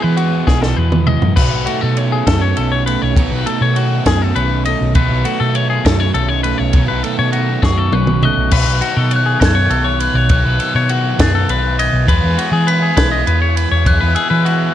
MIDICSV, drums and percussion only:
0, 0, Header, 1, 2, 480
1, 0, Start_track
1, 0, Tempo, 594648
1, 1110, Time_signature, 6, 3, 24, 8
1, 11900, End_track
2, 0, Start_track
2, 0, Title_t, "Drums"
2, 140, Note_on_c, 9, 51, 73
2, 221, Note_off_c, 9, 51, 0
2, 384, Note_on_c, 9, 36, 82
2, 386, Note_on_c, 9, 38, 65
2, 464, Note_off_c, 9, 36, 0
2, 467, Note_off_c, 9, 38, 0
2, 506, Note_on_c, 9, 38, 67
2, 587, Note_off_c, 9, 38, 0
2, 743, Note_on_c, 9, 47, 79
2, 824, Note_off_c, 9, 47, 0
2, 863, Note_on_c, 9, 45, 94
2, 944, Note_off_c, 9, 45, 0
2, 985, Note_on_c, 9, 43, 97
2, 1066, Note_off_c, 9, 43, 0
2, 1103, Note_on_c, 9, 49, 100
2, 1103, Note_on_c, 9, 55, 90
2, 1106, Note_on_c, 9, 36, 119
2, 1184, Note_off_c, 9, 49, 0
2, 1184, Note_off_c, 9, 55, 0
2, 1186, Note_off_c, 9, 36, 0
2, 1345, Note_on_c, 9, 51, 76
2, 1426, Note_off_c, 9, 51, 0
2, 1587, Note_on_c, 9, 51, 82
2, 1668, Note_off_c, 9, 51, 0
2, 1831, Note_on_c, 9, 36, 73
2, 1833, Note_on_c, 9, 51, 103
2, 1839, Note_on_c, 9, 38, 99
2, 1912, Note_off_c, 9, 36, 0
2, 1914, Note_off_c, 9, 51, 0
2, 1920, Note_off_c, 9, 38, 0
2, 2071, Note_on_c, 9, 51, 83
2, 2152, Note_off_c, 9, 51, 0
2, 2319, Note_on_c, 9, 51, 80
2, 2400, Note_off_c, 9, 51, 0
2, 2555, Note_on_c, 9, 36, 123
2, 2558, Note_on_c, 9, 51, 113
2, 2636, Note_off_c, 9, 36, 0
2, 2639, Note_off_c, 9, 51, 0
2, 2798, Note_on_c, 9, 51, 72
2, 2879, Note_off_c, 9, 51, 0
2, 3036, Note_on_c, 9, 51, 77
2, 3116, Note_off_c, 9, 51, 0
2, 3276, Note_on_c, 9, 51, 101
2, 3277, Note_on_c, 9, 36, 72
2, 3281, Note_on_c, 9, 38, 110
2, 3356, Note_off_c, 9, 51, 0
2, 3358, Note_off_c, 9, 36, 0
2, 3362, Note_off_c, 9, 38, 0
2, 3519, Note_on_c, 9, 51, 74
2, 3599, Note_off_c, 9, 51, 0
2, 3757, Note_on_c, 9, 51, 70
2, 3838, Note_off_c, 9, 51, 0
2, 3995, Note_on_c, 9, 51, 107
2, 3999, Note_on_c, 9, 36, 117
2, 4076, Note_off_c, 9, 51, 0
2, 4079, Note_off_c, 9, 36, 0
2, 4239, Note_on_c, 9, 51, 67
2, 4320, Note_off_c, 9, 51, 0
2, 4479, Note_on_c, 9, 51, 79
2, 4559, Note_off_c, 9, 51, 0
2, 4723, Note_on_c, 9, 36, 81
2, 4727, Note_on_c, 9, 51, 90
2, 4733, Note_on_c, 9, 38, 110
2, 4804, Note_off_c, 9, 36, 0
2, 4808, Note_off_c, 9, 51, 0
2, 4813, Note_off_c, 9, 38, 0
2, 4960, Note_on_c, 9, 51, 81
2, 5041, Note_off_c, 9, 51, 0
2, 5198, Note_on_c, 9, 51, 74
2, 5279, Note_off_c, 9, 51, 0
2, 5433, Note_on_c, 9, 51, 104
2, 5439, Note_on_c, 9, 36, 112
2, 5514, Note_off_c, 9, 51, 0
2, 5519, Note_off_c, 9, 36, 0
2, 5681, Note_on_c, 9, 51, 71
2, 5762, Note_off_c, 9, 51, 0
2, 5915, Note_on_c, 9, 51, 78
2, 5996, Note_off_c, 9, 51, 0
2, 6158, Note_on_c, 9, 36, 87
2, 6161, Note_on_c, 9, 38, 70
2, 6239, Note_off_c, 9, 36, 0
2, 6242, Note_off_c, 9, 38, 0
2, 6397, Note_on_c, 9, 48, 76
2, 6478, Note_off_c, 9, 48, 0
2, 6516, Note_on_c, 9, 47, 75
2, 6597, Note_off_c, 9, 47, 0
2, 6640, Note_on_c, 9, 45, 108
2, 6720, Note_off_c, 9, 45, 0
2, 6872, Note_on_c, 9, 49, 127
2, 6877, Note_on_c, 9, 36, 113
2, 6953, Note_off_c, 9, 49, 0
2, 6958, Note_off_c, 9, 36, 0
2, 7117, Note_on_c, 9, 51, 71
2, 7198, Note_off_c, 9, 51, 0
2, 7354, Note_on_c, 9, 51, 88
2, 7434, Note_off_c, 9, 51, 0
2, 7598, Note_on_c, 9, 36, 90
2, 7601, Note_on_c, 9, 51, 105
2, 7607, Note_on_c, 9, 38, 123
2, 7679, Note_off_c, 9, 36, 0
2, 7682, Note_off_c, 9, 51, 0
2, 7687, Note_off_c, 9, 38, 0
2, 7834, Note_on_c, 9, 51, 83
2, 7914, Note_off_c, 9, 51, 0
2, 8075, Note_on_c, 9, 51, 80
2, 8156, Note_off_c, 9, 51, 0
2, 8308, Note_on_c, 9, 51, 105
2, 8314, Note_on_c, 9, 36, 126
2, 8389, Note_off_c, 9, 51, 0
2, 8395, Note_off_c, 9, 36, 0
2, 8554, Note_on_c, 9, 51, 80
2, 8635, Note_off_c, 9, 51, 0
2, 8793, Note_on_c, 9, 51, 86
2, 8873, Note_off_c, 9, 51, 0
2, 9034, Note_on_c, 9, 36, 83
2, 9036, Note_on_c, 9, 51, 123
2, 9041, Note_on_c, 9, 38, 126
2, 9115, Note_off_c, 9, 36, 0
2, 9116, Note_off_c, 9, 51, 0
2, 9122, Note_off_c, 9, 38, 0
2, 9276, Note_on_c, 9, 51, 89
2, 9357, Note_off_c, 9, 51, 0
2, 9519, Note_on_c, 9, 51, 93
2, 9600, Note_off_c, 9, 51, 0
2, 9754, Note_on_c, 9, 36, 127
2, 9759, Note_on_c, 9, 51, 120
2, 9835, Note_off_c, 9, 36, 0
2, 9839, Note_off_c, 9, 51, 0
2, 9998, Note_on_c, 9, 51, 89
2, 10078, Note_off_c, 9, 51, 0
2, 10234, Note_on_c, 9, 51, 98
2, 10314, Note_off_c, 9, 51, 0
2, 10471, Note_on_c, 9, 36, 82
2, 10471, Note_on_c, 9, 51, 107
2, 10477, Note_on_c, 9, 38, 126
2, 10552, Note_off_c, 9, 36, 0
2, 10552, Note_off_c, 9, 51, 0
2, 10558, Note_off_c, 9, 38, 0
2, 10713, Note_on_c, 9, 51, 84
2, 10793, Note_off_c, 9, 51, 0
2, 10954, Note_on_c, 9, 51, 84
2, 11035, Note_off_c, 9, 51, 0
2, 11190, Note_on_c, 9, 36, 127
2, 11190, Note_on_c, 9, 51, 116
2, 11271, Note_off_c, 9, 36, 0
2, 11271, Note_off_c, 9, 51, 0
2, 11427, Note_on_c, 9, 51, 74
2, 11508, Note_off_c, 9, 51, 0
2, 11673, Note_on_c, 9, 51, 80
2, 11753, Note_off_c, 9, 51, 0
2, 11900, End_track
0, 0, End_of_file